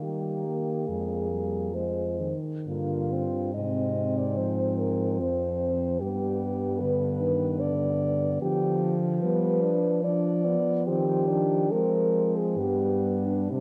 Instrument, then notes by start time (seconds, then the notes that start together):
french horn
Already playing: D#3 A#3
0.02 G3 G4
0.45 A#3
0.88 F2 G#3 G#4
1.31 G3
1.73 F3 G#3 C5
2.19 D#3
2.67 G2 D3 A#3 F4
3.12 C4
3.54 G#2 C3 C4 D#5
4.18 D5
4.36 F3 C5
4.78 A#4
5.20 F2 C5
6.00 G2 G3 B3 G4
6.79 D3 B4
7.20 D#3
7.60 D3 D5
8.42 D3 F3 G4
9.22 G3 B3 B4
9.62 D4
10.03 F3 D4 D5
10.45 B3
10.87 D#3 C4 G4
11.29 D4
11.71 F3 G#3 C4 A#4
12.36 G#4
12.58 G2 G3 B3 G4
13.26 D4
13.51 C3 G3 C4 D4